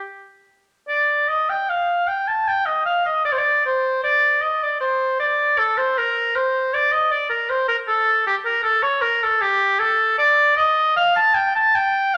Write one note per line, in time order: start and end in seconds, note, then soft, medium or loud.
0.88 1.30 D5 medium
1.28 1.51 D#5 medium
1.49 1.71 G5 medium
1.69 2.09 F5 medium
2.07 2.29 G5 medium
2.28 2.49 A5 medium
2.48 2.67 G5 medium
2.65 2.85 D#5 medium
2.85 3.05 F5 medium
3.05 3.24 D#5 medium
3.25 3.34 D5 medium
3.32 3.40 C5 medium
3.38 3.64 D5 medium
3.65 4.03 C5 medium
4.03 4.43 D5 medium
4.41 4.64 D#5 medium
4.63 4.80 D5 medium
4.80 5.18 C5 medium
5.19 5.59 D5 medium
5.58 5.79 A4 medium
5.78 5.99 C5 medium
5.98 6.37 A#4 medium
6.35 6.75 C5 medium
6.74 6.94 D5 medium
6.92 7.13 D#5 medium
7.11 7.29 D5 medium
7.29 7.51 A#4 medium
7.49 7.67 C5 medium
7.68 7.77 A#4 medium
7.88 8.25 A4 medium
8.26 8.35 G4 medium
8.45 8.62 A#4 medium
8.63 8.84 A4 medium
8.82 9.03 C#5 medium
9.01 9.24 A#4 medium
9.23 9.43 A4 medium
9.41 9.81 G4 medium
9.79 10.17 A4 medium
10.18 10.56 D5 medium
10.56 10.95 D#5 medium
10.96 11.15 F5 loud
11.16 11.36 A5 loud
11.34 11.54 G5 medium
11.55 11.76 A5 medium
11.75 12.15 G5 loud
12.14 12.17 F5 loud